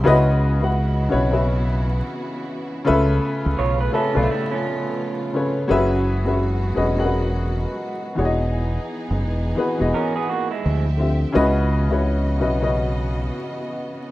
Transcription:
0.04 C#2 C#3 E3 B3 C#4 E4 F#4 B4 D#5
0.60 C#3 C#4 E4 F#4 B4 F#5
1.09 C#3 C#4 E4 F#4 B4 C#5
1.14 B1
1.31 C#3 C#4 E4 F#4 B4 E5
2.85 C#3 A3 B3 C#4 F4 A4 B4 E5
2.89 C#2
3.46 C#2
3.59 B1 F4 C#5
3.81 B4
3.91 C#3 C#4 F4 A4 B4 E5
4.13 B1 C#3 C#4 F4 A4 B4 D5
4.17 A3
4.23 E5
4.31 G3 E4
4.51 F3 C#4
5.33 C#3 C#4 F4 A4 B4 C#5
5.68 F#1 E3 F#3 G#3 C#4 F#4 G#4 B4 E5
6.25 F#3 C#4 G#4 B4 E5
6.74 E1 F#3 C#4 G#4 B4 D#5
6.96 F#3 C#4 G#4 A#4 F#5
7.06 B4
8.15 E1 E3 B3 D#4 F#4 G#4 C#5
8.25 D#5
9.10 F#1
9.24 E1
9.55 E3 B3 F#4 G#4 B4
9.78 E1 E3 B3 F#4 G#4 D#5
9.94 C#4 A#4
10.16 B3 G#4
10.29 A#3 F#4
10.51 G#3 E4
10.65 D2 F3 C4 G4 E5
10.97 D3 C4 F4 G4 E5
11.32 C#2 C#3 E3 B3 C#4 E4 F#4 B4 D#5
11.89 C#3 C#4 E4 F#4 B4 C#5
12.39 B1 C#3 C#4 E4 F#4 B4 D#5
12.61 C#3 C#4 E4 F#4 B4 D#5

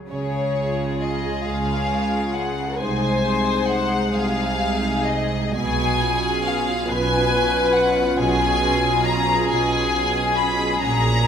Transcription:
0.09 C#2 C#3 G#4 C#5
0.56 G#3 F4
1.02 D#5
1.46 C#2 C#3 F5
1.91 G#3 F4
2.35 F#5
2.78 C2 C3 G#3 D#4 C5 G#5
3.23 G#3 D#4
3.68 F#5
4.12 C2 C3 G#4 F5
4.60 G#3 D#4
5.07 D#5
5.54 B1 B2 G#4 G#5
6.00 C#4 F4
6.45 F5
6.88 B1 B2 B4 G#5
7.32 C#4 F4
7.74 F#5
8.17 B1 B2 G#4 G#5
8.61 C#4 F4
9.04 A#5
9.48 B1 B2 G#5
9.92 C#4 F4
10.36 B5
10.80 A#1 A#2 C#4 F#4 A#5

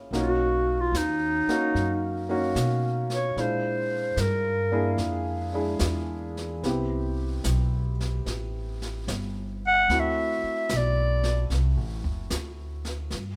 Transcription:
Already playing: A#3 C#4 E4 G#4
0.11 B1 A#3 C#4 D#4 F#4, brush sweep, snare
0.20 F#4
0.81 F4
0.92 D#2, snare, hi-hat pedal
0.98 D#4
1.47 A#3 C#4 D#4 F#4, muted upright bass stroke, snare
1.74 F#2, brush sweep, snare
2.29 A#3 C#4 D#4 F#4
2.55 B2, snare, hi-hat pedal
3.10 snare
3.14 C#5
3.36 A#2 G#3 D4 E4 F4, brush sweep, snare
3.41 C5
4.16 G2, snare, hi-hat pedal
4.21 A#4
4.72 A#3 D4 E4 G#4
4.97 F2, brush sweep, snare
5.53 G#3 D4 E4 G#4
5.79 E2, snare, hi-hat pedal
6.37 snare
6.63 C2 B3 C4 E4 G4, brush sweep, snare
7.44 B1, snare, hi-hat pedal
8.00 snare
8.26 A1, brush sweep, snare
8.82 snare
9.07 G1, snare, hi-hat pedal
9.67 F#5
9.88 D2 A3 C4 E4 F#4, brush sweep, snare
10.00 E5
10.43 muted upright bass stroke
10.69 B1, snare, hi-hat pedal
10.77 D5
11.23 snare
11.50 C2, brush sweep, snare
11.77 A1
12.04 F#1, kick
12.30 D2, snare, hi-hat pedal
12.85 snare
13.10 G2, brush sweep, snare

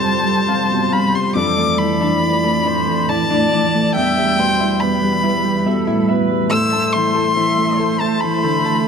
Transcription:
Already playing: F2 C3 G3 C4 F4 G4 A4 C5 F5 A5
0.03 C5
0.24 G3 A4
0.48 C3 F5
0.71 B2
0.92 C3 F5 B5
1.14 G3 C6
1.35 F2 E3 A3 D4 A4 D5 D6
1.57 A3 D5
1.79 E3 A4 B5
2.01 E3 D4
2.23 E3 D5
2.43 A3 A4
2.65 D4 C5 D5
2.88 A3
3.09 E3 D5 A5
3.30 E3 D4
3.52 E3 D5
3.75 A3
3.95 E2 G3 E4 E5 G5
4.17 G3 E5
4.38 B2 B4 C5
4.60 E4
4.80 B2 G4 B4 B5
5.03 G3 B4
5.23 E4 B4
5.44 G3 G4
5.66 B2 A4 E5
5.87 A2 E4
6.08 B2 B4 E5
6.31 G3
6.50 A2 A3 E4 A4 C5 E6
6.72 A3 A5
6.92 E3 E5 C6
7.15 E4 A4
7.36 E3 C5 E5
7.58 A3 E5
7.79 A4 C5
8.00 A3 C5 A5
8.20 E3 A5 B5
8.43 D3 A4
8.65 E3 A5

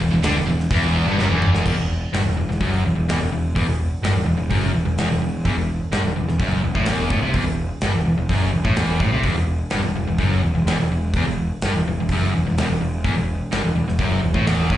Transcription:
0.00 E1 E2
0.11 E1 E2
0.23 D2 D3, snare, open hi-hat
0.35 E1 E2
0.48 E1 E2
0.60 snare
0.71 E1 E2, kick, open hi-hat
1.06 G1 G2
1.18 F#1 F#2, snare
1.29 E1 E2
1.42 mid tom
1.54 snare
1.66 E1 E2, kick, crash
1.78 E1 E2
2.13 G1 G2, snare, open hi-hat
2.24 E1 E2
2.37 E1 E2
2.49 E1 E2, snare
2.60 F#1 F#2, kick, open hi-hat
2.85 E1 E2
2.95 E1 E2
3.08 E1 E2, snare, open hi-hat
3.21 E1 E2
3.32 E1 E2
3.55 E1 E2, kick, open hi-hat
3.67 E1 E2
4.02 G1 G2, snare, open hi-hat
4.15 E1 E2
4.26 E1 E2
4.37 E1 E2
4.50 F#1 F#2, kick, open hi-hat
4.74 E1 E2
4.85 E1 E2
4.98 E1 E2, snare, open hi-hat
5.10 E1 E2
5.21 E1 E2
5.45 E1 E2, kick, open hi-hat
5.56 E1 E2
5.92 G1 G2, snare, open hi-hat
6.04 E1 E2
6.16 E1 E2
6.28 E1 E2, snare
6.40 F#1 F#2, kick, open hi-hat
6.63 E1 E2
6.75 A1 A2, kick
6.86 E1 E2, snare, open hi-hat
7.10 A1 A2, kick
7.21 C2 C3
7.33 E1 E2, kick, open hi-hat
7.46 E1 E2
7.81 G1 G2, snare, open hi-hat
7.94 E1 E2
8.05 E1 E2
8.18 E1 E2
8.29 F#1 F#2, kick, open hi-hat
8.53 E1 E2
8.65 A1 A2, kick
8.76 E1 E2, snare, open hi-hat
9.00 A1 A2, kick
9.12 C2 C3
9.23 E1 E2, kick, open hi-hat
9.38 E1 E2
9.70 G1 G2, snare, open hi-hat
9.83 E1 E2
9.96 E1 E2
10.07 E1 E2
10.18 F#1 F#2, kick, open hi-hat
10.43 E1 E2
10.55 E1 E2
10.65 E1 E2, snare, open hi-hat
10.78 E1 E2
10.89 E1 E2
11.14 E1 E2, kick, open hi-hat
11.26 E1 E2
11.62 G1 G2, snare, open hi-hat
11.74 E1 E2
11.87 E1 E2
11.99 E1 E2
12.09 F#1 F#2, kick, open hi-hat
12.34 E1 E2
12.46 E1 E2
12.57 E1 E2, snare, open hi-hat
12.69 E1 E2
12.81 E1 E2
13.04 E1 E2, kick, open hi-hat
13.17 E1 E2
13.52 G1 G2, snare, open hi-hat
13.64 E1 E2
13.76 E1 E2
13.88 E1 E2, snare
13.99 F#1 F#2, kick, open hi-hat
14.23 E1 E2
14.34 A1 A2, kick
14.46 E1 E2, snare, open hi-hat
14.70 A1 A2, kick

